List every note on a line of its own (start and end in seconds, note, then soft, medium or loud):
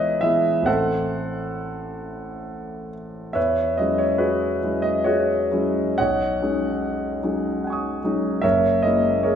0.00 0.70 C#2 soft
0.00 0.23 E3 soft
0.00 0.23 G#3 soft
0.00 0.23 B3 soft
0.00 0.24 E4 medium
0.00 0.70 G#4 soft
0.00 0.70 B4 medium
0.00 0.70 C#5 medium
0.00 0.70 D#5 medium
0.00 0.21 E5 medium
0.21 0.62 E3 soft
0.21 0.64 G#3 soft
0.21 0.64 B3 soft
0.21 0.64 E4 soft
0.21 0.66 E5 medium
0.62 3.29 A1 soft
0.62 3.30 E3 soft
0.62 3.30 A3 soft
0.62 3.31 C4 soft
0.62 2.88 C5 medium
0.62 2.92 F#5 medium
0.67 3.32 E4 soft
0.67 2.88 A4 medium
3.33 3.77 E2 soft
3.33 3.75 B4 medium
3.33 3.74 C#5 medium
3.33 3.77 E5 medium
3.78 4.58 F#3 soft
3.78 4.58 G#3 soft
3.78 4.58 C#4 soft
3.78 4.59 E4 soft
3.78 3.99 D#5 medium
3.98 4.19 C#5 medium
4.18 4.78 F#4 soft
4.18 4.78 G#4 soft
4.18 4.82 B4 medium
4.63 5.47 F#3 soft
4.63 5.48 G#3 soft
4.63 5.48 C#4 soft
4.63 5.48 E4 soft
4.82 5.04 D#5 medium
5.04 5.94 F#4 soft
5.04 5.94 G#4 soft
5.04 5.97 C#5 medium
5.52 5.94 F#3 soft
5.52 5.94 G#3 soft
5.52 5.95 C#4 soft
5.52 5.95 E4 soft
5.98 6.41 B1 soft
5.98 8.00 C#5 medium
5.98 7.99 D#5 medium
5.98 7.63 F#5 medium
6.41 7.19 F#3 soft
6.41 7.19 G#3 soft
6.41 7.19 C#4 soft
6.41 7.19 D#4 soft
7.23 7.99 F#3 soft
7.23 7.99 G#3 soft
7.23 7.99 C#4 soft
7.23 7.99 D#4 soft
7.64 8.40 F#5 soft
7.64 8.41 G#5 soft
7.70 8.43 C#6 soft
7.70 8.44 D#6 soft
8.04 8.40 F#3 soft
8.04 8.40 G#3 soft
8.04 8.40 C#4 soft
8.04 8.40 D#4 soft
8.41 8.83 F#1 soft
8.41 8.81 A#4 medium
8.41 8.82 C#5 medium
8.41 8.83 E5 medium
8.82 9.35 G#3 soft
8.82 9.35 A#3 soft
8.82 9.35 C#4 soft
8.82 9.35 E4 soft
8.82 9.25 D#5 medium
9.23 9.35 G#4 soft
9.23 9.35 A#4 soft
9.23 9.35 C#5 medium